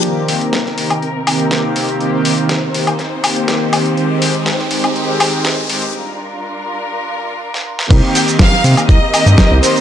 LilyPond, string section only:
\new Staff \with { instrumentName = "String section" } { \time 4/4 \key c \minor \tempo 4 = 122 << { bes'1 | c''1~ | c''1 | bes'1 |
ees''1 | } \\ { <c c' ees'>1~ | <c c' ees'>1 | <aes ees' g'>1 | <g d' f'>1 |
<c' g' bes'>1 | } >> }